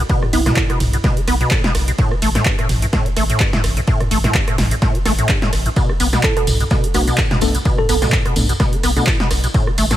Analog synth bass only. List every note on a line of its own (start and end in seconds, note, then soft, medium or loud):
0.33 0.50 B1 loud
0.80 0.97 B1 medium
1.28 1.44 B1 medium
1.75 1.92 B1 medium
2.22 2.39 A1 loud
2.69 2.86 A1 medium
3.17 3.33 A1 medium
3.64 3.81 A1 medium
4.11 4.28 A1 loud
4.58 4.75 A1 medium
5.06 5.22 A1 loud
5.53 5.69 A1 medium
6.00 6.17 B1 loud
6.47 6.64 B1 medium
6.95 7.11 B1 medium
7.42 7.58 B1 medium
7.89 8.06 B1 loud
8.36 8.53 B1 medium
8.84 9.00 B1 medium
9.31 9.47 B1 medium
9.78 9.95 A1 loud